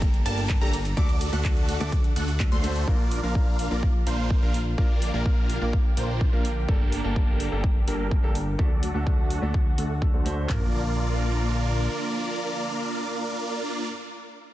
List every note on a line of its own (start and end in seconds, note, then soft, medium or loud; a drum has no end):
0.00 0.23 G1 loud
0.00 kick loud
0.00 closed hi-hat medium
0.00 ride medium
0.00 cabasa soft
0.14 closed hi-hat soft
0.25 0.59 G1 loud
0.25 0.40 A#3 medium
0.25 0.59 A#3 loud
0.25 0.40 D4 medium
0.25 0.59 D4 medium
0.25 0.59 G4 medium
0.25 0.40 G4 medium
0.25 0.59 A4 medium
0.25 0.59 A#4 loud
0.25 0.40 A#4 medium
0.25 0.59 A5 loud
0.25 open hi-hat loud
0.25 ride medium
0.25 cabasa medium
0.38 closed hi-hat soft
0.38 cabasa soft
0.49 kick loud
0.49 clap loud
0.49 closed hi-hat medium
0.49 ride medium
0.49 cabasa soft
0.61 0.95 G1 medium
0.61 0.70 A#3 loud
0.61 0.75 A#3 loud
0.61 0.70 D4 medium
0.61 0.75 D4 medium
0.61 0.75 G4 medium
0.61 0.71 G4 medium
0.61 0.75 A4 medium
0.61 0.71 A4 loud
0.61 0.75 A#4 loud
0.61 0.75 A#5 loud
0.61 closed hi-hat soft
0.73 open hi-hat medium
0.73 ride medium
0.73 cabasa medium
0.85 closed hi-hat soft
0.85 cabasa soft
0.96 1.30 D2 loud
0.96 1.06 A3 medium
0.96 1.30 A3 medium
0.96 1.06 D4 medium
0.96 1.30 D4 medium
0.96 1.30 F#4 medium
0.96 1.06 F#4 medium
0.96 1.30 A4 medium
0.96 1.06 A4 loud
0.96 1.30 D5 loud
0.96 1.30 D6 loud
0.96 kick loud
0.96 closed hi-hat medium
0.96 ride medium
0.96 cabasa soft
1.09 closed hi-hat soft
1.21 open hi-hat loud
1.21 ride medium
1.21 cabasa medium
1.32 1.78 D2 loud
1.32 1.77 A3 medium
1.32 1.78 A3 medium
1.32 1.78 D4 medium
1.32 1.78 F#4 medium
1.32 1.78 A4 medium
1.32 1.78 A4 loud
1.32 1.78 F#5 loud
1.32 1.78 F#6 loud
1.32 closed hi-hat soft
1.32 cabasa soft
1.45 kick loud
1.45 clap loud
1.45 closed hi-hat medium
1.45 ride medium
1.45 cabasa soft
1.57 closed hi-hat soft
1.69 open hi-hat medium
1.69 ride medium
1.69 cabasa medium
1.80 2.14 D2 loud
1.80 1.89 A3 loud
1.80 1.94 A3 medium
1.80 1.89 D4 medium
1.80 1.94 D4 medium
1.80 1.94 F#4 medium
1.80 1.90 F#4 medium
1.80 1.94 A4 medium
1.80 1.90 A4 loud
1.80 1.94 D5 medium
1.80 1.94 D6 medium
1.80 closed hi-hat soft
1.80 cabasa soft
1.92 kick loud
1.92 closed hi-hat medium
1.92 ride medium
1.92 cabasa soft
2.04 closed hi-hat soft
2.16 2.50 D2 loud
2.16 2.30 A3 medium
2.16 2.30 D4 medium
2.16 2.30 F#4 medium
2.16 2.30 A4 medium
2.16 2.30 F#5 loud
2.16 2.30 F#6 loud
2.16 open hi-hat loud
2.16 ride medium
2.16 cabasa medium
2.28 closed hi-hat soft
2.28 cabasa soft
2.39 2.49 A3 medium
2.39 2.49 D4 medium
2.39 2.49 F#4 medium
2.39 2.49 A4 medium
2.39 kick loud
2.39 clap loud
2.39 closed hi-hat medium
2.39 ride medium
2.39 cabasa soft
2.51 2.85 D2 loud
2.51 2.61 A3 medium
2.51 2.85 A3 medium
2.51 2.61 D4 medium
2.51 2.85 D4 medium
2.51 2.85 F#4 medium
2.51 2.61 F#4 medium
2.51 2.85 A4 medium
2.51 2.61 A4 medium
2.51 2.85 C5 medium
2.51 2.85 C6 medium
2.51 closed hi-hat soft
2.63 2.84 A3 medium
2.63 2.85 D4 medium
2.63 2.85 F#4 medium
2.63 2.85 C5 loud
2.63 open hi-hat medium
2.63 ride medium
2.63 cabasa medium
2.76 closed hi-hat soft
2.76 cabasa soft
2.87 3.21 A#1 loud
2.87 10.46 D3 medium
2.87 6.65 F3 medium
2.87 2.96 A#3 medium
2.87 8.55 A#3 medium
2.87 3.20 A#3 medium
2.87 2.96 D4 medium
2.87 3.20 D4 medium
2.87 4.76 F4 medium
2.87 3.20 F4 medium
2.87 2.97 F4 medium
2.87 3.20 A#4 medium
2.87 2.97 A#4 medium
2.87 3.20 D5 loud
2.87 kick loud
3.11 open hi-hat loud
3.23 3.69 A#1 loud
3.23 3.68 A#3 medium
3.23 3.68 D4 medium
3.23 3.68 F4 medium
3.23 3.68 A#4 medium
3.23 3.68 A#4 loud
3.23 3.68 F5 loud
3.35 kick loud
3.59 open hi-hat medium
3.70 4.04 A#1 loud
3.70 3.80 A#3 medium
3.70 3.85 A#3 medium
3.70 3.80 D4 medium
3.70 3.85 D4 medium
3.70 3.85 F4 medium
3.70 3.80 F4 medium
3.70 3.85 A#4 medium
3.70 3.80 A#4 loud
3.70 3.85 D5 medium
3.83 kick loud
4.06 4.40 A#1 loud
4.06 4.21 A#3 medium
4.06 4.40 A#3 loud
4.06 4.21 D4 medium
4.06 4.40 D4 medium
4.06 4.40 F4 medium
4.06 4.21 F4 medium
4.06 4.40 A#4 medium
4.06 4.40 C5 loud
4.06 4.21 C5 medium
4.06 open hi-hat loud
4.30 kick loud
4.42 4.76 A#1 medium
4.42 4.51 A#3 medium
4.42 4.56 A#3 loud
4.42 4.51 D4 medium
4.42 4.56 D4 medium
4.42 4.56 F4 medium
4.42 4.51 F4 medium
4.42 4.56 A#4 medium
4.42 4.52 A#4 loud
4.42 4.56 F5 loud
4.54 open hi-hat medium
4.78 5.11 A#1 medium
4.78 4.87 A#3 medium
4.78 5.11 A#3 medium
4.78 4.87 D4 medium
4.78 5.11 D4 medium
4.78 5.11 F4 medium
4.78 4.87 F4 medium
4.78 8.55 G4 medium
4.78 5.11 A#4 medium
4.78 4.87 A#4 loud
4.78 5.11 D5 medium
4.78 kick loud
5.02 open hi-hat loud
5.13 5.59 A#1 medium
5.13 5.58 A#3 medium
5.13 5.59 A#3 medium
5.13 5.58 D4 medium
5.13 5.59 D4 medium
5.13 5.59 F4 medium
5.13 5.59 A#4 medium
5.13 5.59 A#4 loud
5.13 5.59 F5 loud
5.26 kick loud
5.50 open hi-hat medium
5.61 5.95 A#1 loud
5.61 5.70 A#3 medium
5.61 5.75 A#3 medium
5.61 5.70 D4 medium
5.61 5.75 D4 medium
5.61 5.75 F4 medium
5.61 5.71 F4 medium
5.61 5.75 A#4 medium
5.61 5.71 A#4 loud
5.61 5.75 D5 medium
5.73 kick loud
5.97 6.30 A#1 loud
5.97 6.11 A#3 medium
5.97 6.30 A#3 loud
5.97 6.11 D4 medium
5.97 6.30 D4 medium
5.97 6.30 F4 medium
5.97 6.12 F4 medium
5.97 6.30 A#4 medium
5.97 6.30 C5 loud
5.97 6.12 C5 medium
5.97 open hi-hat loud
6.21 kick loud
6.32 6.66 A#1 medium
6.32 6.42 A#3 medium
6.32 6.47 A#3 loud
6.32 6.42 D4 medium
6.32 6.47 D4 medium
6.32 6.47 F4 medium
6.32 6.42 F4 medium
6.32 6.47 A#4 medium
6.32 6.42 A#4 loud
6.32 6.47 F5 loud
6.45 open hi-hat medium
6.68 7.02 G1 medium
6.68 6.77 A#3 medium
6.68 7.01 A#3 medium
6.68 6.77 D4 medium
6.68 7.01 D4 medium
6.68 7.01 G4 medium
6.68 6.78 G4 medium
6.68 7.01 A4 medium
6.68 6.78 A4 loud
6.68 7.01 A#4 medium
6.68 kick loud
6.92 open hi-hat loud
7.04 7.50 G1 medium
7.04 7.49 A#3 medium
7.04 7.49 D4 medium
7.04 7.49 G4 medium
7.04 7.49 A4 medium
7.04 7.49 A#4 loud
7.04 7.49 A5 loud
7.16 kick loud
7.40 open hi-hat medium
7.51 7.85 G1 loud
7.51 7.61 A#3 medium
7.51 7.66 A#3 medium
7.51 7.61 D4 medium
7.51 7.66 D4 medium
7.51 7.66 G4 medium
7.51 7.61 G4 medium
7.51 7.66 A4 medium
7.51 7.61 A4 loud
7.51 7.66 A#4 medium
7.64 kick loud
7.87 8.21 G1 loud
7.87 8.02 A#3 medium
7.87 8.20 A#3 medium
7.87 8.02 D4 medium
7.87 8.20 D4 medium
7.87 8.20 G4 medium
7.87 8.02 G4 medium
7.87 8.20 A4 medium
7.87 8.20 A#4 loud
7.87 8.02 A#4 medium
7.87 open hi-hat loud
8.11 kick loud
8.23 8.57 G1 medium
8.23 8.32 A#3 medium
8.23 8.37 A#3 loud
8.23 8.32 D4 medium
8.23 8.37 D4 medium
8.23 8.37 G4 medium
8.23 8.32 G4 medium
8.23 8.37 A4 medium
8.23 8.33 A4 loud
8.23 8.37 A#4 loud
8.35 open hi-hat medium
8.58 8.92 D2 medium
8.58 10.48 F#3 medium
8.58 8.68 A3 medium
8.58 8.92 A3 medium
8.58 8.68 D4 medium
8.58 8.92 D4 medium
8.58 10.48 F#4 medium
8.58 8.92 F#4 medium
8.58 8.68 F#4 medium
8.58 8.92 A4 medium
8.58 8.68 A4 medium
8.58 8.92 D5 medium
8.58 kick loud
8.83 open hi-hat loud
8.94 9.40 D2 loud
8.94 9.39 A3 medium
8.94 9.39 D4 medium
8.94 9.40 F#4 medium
8.94 9.40 A4 medium
8.94 9.40 A4 loud
8.94 9.40 F#5 loud
9.07 kick loud
9.30 open hi-hat medium
9.42 9.76 D2 medium
9.42 9.51 A3 medium
9.42 9.56 A3 medium
9.42 9.51 D4 medium
9.42 9.56 D4 medium
9.42 9.56 F#4 medium
9.42 9.51 F#4 medium
9.42 9.56 A4 medium
9.42 9.52 A4 loud
9.42 9.56 D5 medium
9.54 kick loud
9.78 10.11 D2 loud
9.78 9.92 A3 medium
9.78 9.92 D4 medium
9.78 9.92 F#4 medium
9.78 9.92 A4 medium
9.78 9.92 F#5 medium
9.78 open hi-hat loud
10.01 10.11 A3 medium
10.01 10.11 D4 medium
10.01 10.11 F#4 medium
10.01 10.11 A4 medium
10.01 kick loud
10.13 10.47 D2 medium
10.13 10.22 A3 medium
10.13 10.47 A3 medium
10.13 10.23 D4 medium
10.13 10.47 D4 medium
10.13 10.47 F#4 medium
10.13 10.23 F#4 medium
10.13 10.47 A4 medium
10.13 10.23 A4 medium
10.13 10.47 C5 medium
10.25 10.46 A3 medium
10.25 10.47 D4 medium
10.25 10.47 F#4 medium
10.25 10.47 C5 loud
10.25 open hi-hat medium
10.48 11.88 A#1 medium
10.48 13.87 D3 medium
10.48 13.87 F3 medium
10.48 13.85 A#3 medium
10.48 13.87 A#3 medium
10.48 13.87 D4 medium
10.48 13.87 F4 medium
10.48 13.88 F4 medium
10.48 13.87 A#4 medium
10.48 13.89 A#4 medium
10.48 13.87 D5 loud
10.48 kick medium
10.48 clap medium
10.48 floor tom loud